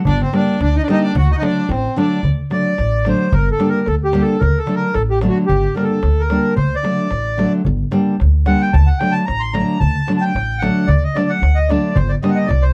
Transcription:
0.05 upright bass G1, accordion D4, violin D5, darbuka dum
0.20 accordion C4, violin C5, darbuka tek
0.33 nylon-string guitar D3 G3 A#3 D4, accordion D4, darbuka tek
0.37 violin D5
0.48 darbuka tek
0.60 upright bass D2, accordion D4, violin D5, darbuka tek
0.76 accordion D#4, violin D#5
0.82 accordion D4, violin D5
0.88 nylon-string guitar D3 G3 A#3 D4, accordion D#4, violin D#5, darbuka tek
1.04 accordion D4, violin D5
1.15 upright bass D2, accordion F#4, violin F#5, darbuka dum
1.34 accordion D#4 F#4, violin F#5
1.40 nylon-string guitar D3 F#3 A3 D4, accordion D4, violin D#5, darbuka tek
1.46 violin D5
1.59 darbuka tek
1.69 upright bass A1, accordion C4, darbuka tek
1.73 violin C5
1.86 darbuka tek
1.96 nylon-string guitar D3 F#3 A3 D4, accordion D4, darbuka tek
2.01 violin D5
2.12 darbuka tek
2.23 upright bass D2, darbuka dum
2.50 nylon-string guitar D3 F#3 A3 D4, accordion D5, darbuka tek
2.78 upright bass A1, darbuka tek
3.05 nylon-string guitar D3 F#3 A3 D4, accordion C5, darbuka tek
3.32 upright bass G1, accordion A#4, darbuka dum
3.51 accordion A4
3.59 nylon-string guitar D3 G3 A#3 D4, darbuka tek
3.69 accordion A#4
3.86 upright bass D2, accordion A4, darbuka tek
4.04 accordion G4
4.13 nylon-string guitar D3 G3 A#3 D4, darbuka tek
4.22 accordion A4
4.28 darbuka tek
4.40 upright bass D2, accordion A#4, darbuka dum
4.58 accordion A4
4.66 nylon-string guitar D3 F#3 A3 D4, darbuka tek
4.76 accordion A#4
4.94 upright bass A1, accordion A4, darbuka tek
5.10 accordion G4
5.21 nylon-string guitar D3 F#3 A3 D4, darbuka tek
5.29 accordion F#4
5.46 upright bass G1, accordion G4, darbuka dum
5.65 darbuka tek
5.75 nylon-string guitar D3 G3 A#3 D4, accordion A#4, darbuka tek
5.84 accordion A4
5.91 darbuka tek
6.03 upright bass D2, darbuka tek
6.20 accordion A#4
6.30 nylon-string guitar D3 G3 A#3 D4, darbuka tek
6.45 darbuka tek
6.56 upright bass D2, accordion C5, darbuka dum
6.75 accordion D5
6.83 nylon-string guitar D3 F#3 A3 D4, darbuka tek
7.11 upright bass A1, darbuka tek
7.37 nylon-string guitar D3 F#3 A3 D4, darbuka tek
7.65 upright bass G1, darbuka dum
7.91 nylon-string guitar D3 G3 A#3 D4, darbuka tek
8.20 upright bass D2, darbuka tek
8.46 nylon-string guitar D3 G3 A#3 D4, accordion F#5, darbuka tek
8.62 accordion G5, darbuka tek
8.73 upright bass D2, accordion A5, darbuka dum
8.87 accordion F#5
8.99 nylon-string guitar D3 F#3 A3 D4, accordion G5, darbuka tek
9.12 accordion A5
9.26 upright bass A1, accordion A#5, darbuka tek
9.40 accordion C6
9.53 nylon-string guitar D3 F#3 A3 D4, accordion A#5, darbuka tek
9.68 darbuka tek
9.79 upright bass D2, accordion A5, darbuka dum
9.95 darbuka tek
10.07 nylon-string guitar D3 F#3 A3 D4, darbuka tek
10.17 accordion A5
10.21 accordion G5, darbuka tek
10.35 upright bass A1, darbuka tek
10.50 darbuka tek
10.59 nylon-string guitar D3 F#3, accordion F#5, darbuka tek
10.63 nylon-string guitar A3 D4
10.77 darbuka tek
10.87 upright bass D2, accordion D5, darbuka dum
11.03 accordion D#5
11.15 nylon-string guitar D3 F#3 A3 D4, accordion D5, darbuka tek
11.29 accordion F#5
11.42 upright bass D2, darbuka tek
11.55 accordion D#5
11.68 nylon-string guitar D3 F#3 A3 D4, accordion D5, darbuka tek
11.95 upright bass G1, accordion C5, darbuka dum
12.09 accordion D5
12.22 nylon-string guitar D3 G3 A#3 D4, accordion D#5, darbuka tek
12.29 accordion F#5
12.35 accordion D#5
12.46 upright bass C2, accordion D5
12.51 darbuka tek
12.62 accordion C5

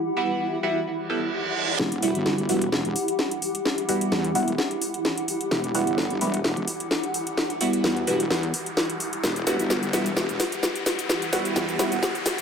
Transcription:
Already playing: ambient pad E4 G4 F#5
0.17 synth stab G3 B3 E4 F#4
0.63 synth stab G3 B3 E4 F#4
0.86 reverse cymbal
1.10 synth stab G3 B3 E4 A4
1.79 wobble bass E1, snare, riser
1.92 closed hi-hat
2.02 synth stab G3 B3 E4 F#4, open hi-hat
2.15 wobble bass G1, closed hi-hat
2.26 snare
2.38 closed hi-hat
2.49 wobble bass E1, synth stab G3 B3 E4 F#4, open hi-hat
2.62 closed hi-hat
2.72 snare
2.85 wobble bass E1, closed hi-hat
2.96 open hi-hat
3.08 closed hi-hat
3.19 snare
3.31 closed hi-hat
3.42 open hi-hat
3.55 closed hi-hat
3.65 snare
3.78 closed hi-hat
3.89 synth stab G3 B3 E4 F#4, open hi-hat
4.01 closed hi-hat
4.12 wobble bass E2, snare
4.24 closed hi-hat
4.35 wobble bass E1, synth stab G3 B3 E4 F#4, open hi-hat
4.48 closed hi-hat
4.58 snare
4.71 closed hi-hat
4.82 open hi-hat
4.94 closed hi-hat
5.05 snare
5.18 closed hi-hat
5.28 open hi-hat
5.41 closed hi-hat
5.51 wobble bass E1, snare
5.64 closed hi-hat
5.75 synth stab G3 B3 E4 F#4, open hi-hat
5.87 wobble bass G1, closed hi-hat
5.98 snare
6.10 closed hi-hat
6.21 wobble bass E1, synth stab G3 B3 E4 F#4, open hi-hat
6.34 closed hi-hat
6.44 snare
6.57 wobble bass E1, closed hi-hat
6.68 open hi-hat
6.80 closed hi-hat
6.91 snare
7.04 closed hi-hat
7.14 open hi-hat
7.27 closed hi-hat
7.37 snare
7.50 closed hi-hat
7.61 synth stab G3 B3 E4 F#4, open hi-hat
7.73 closed hi-hat
7.84 wobble bass E2, snare
7.97 closed hi-hat
8.07 wobble bass E1, synth stab G3 B3 E4 F#4, open hi-hat
8.20 closed hi-hat
8.30 wobble bass E2, snare
8.43 closed hi-hat
8.54 open hi-hat
8.66 closed hi-hat
8.77 snare
8.90 closed hi-hat
9.00 open hi-hat
9.13 closed hi-hat
9.24 wobble bass E1, snare, shaker
9.36 closed hi-hat, shaker
9.47 synth stab G3 B3 E4 F#4, snare, open hi-hat, shaker
9.59 wobble bass G1, closed hi-hat, shaker
9.70 snare, shaker
9.83 closed hi-hat, shaker
9.93 wobble bass E1, synth stab G3 B3 E4 F#4, snare, open hi-hat, shaker
10.06 closed hi-hat, shaker
10.17 snare, shaker
10.29 wobble bass E1, closed hi-hat, shaker
10.40 snare, open hi-hat, shaker
10.52 closed hi-hat, shaker
10.63 snare, shaker
10.76 closed hi-hat, shaker
10.86 snare, open hi-hat, shaker
10.99 closed hi-hat, shaker
11.09 snare, shaker
11.22 closed hi-hat, shaker
11.33 synth stab G3 B3 E4 F#4, snare, open hi-hat, shaker
11.45 closed hi-hat, shaker
11.56 wobble bass E2, snare, shaker
11.69 closed hi-hat, shaker
11.79 wobble bass E1, synth stab G3 B3 E4 F#4, snare, open hi-hat, shaker
11.92 closed hi-hat, shaker
12.03 snare, shaker
12.15 closed hi-hat, shaker
12.26 snare, open hi-hat, shaker
12.38 closed hi-hat

